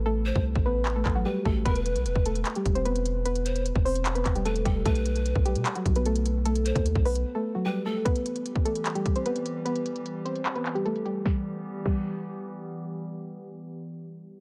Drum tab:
CC |----------------|----------------|----------------|----------------|
HH |----------------|xxxxx-xxxxxxxxx-|xxxxx-oxxxxxxxx-|xxxxx-xxxxxxxxx-|
CP |--------x-x-----|--------x-------|--------x-x-----|--------x-------|
SD |----------------|----------------|----------------|----------------|
BD |---o-o----o---o-|o----o----o-----|-----o----o---o-|o----o----o-----|

CC |----------------|----------------|----------------|------x---------|
HH |xxxxx-ox--------|xxxxx-xxxxxxxxx-|xxxxx-xxxxxxxxx-|----------------|
CP |----------------|--------x-------|--------x-x-----|----------------|
SD |----------------|----------------|----------------|o---------------|
BD |---o-o----------|o----o----o-----|----------------|o-----o---------|

CC |----------------|
HH |----------------|
CP |----------------|
SD |----------------|
BD |----------------|